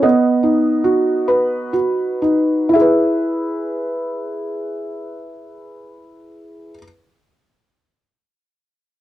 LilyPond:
\new Staff \with { instrumentName = "Felt piano" } { \time 6/8 \key e \major \tempo 4. = 38 << { dis''2 r4 | <e' gis' b' e''>2.~ | <e' gis' b' e''>2. | } \\ { b8 dis'8 fis'8 b'8 fis'8 dis'8 | r2. | r2. | } >> }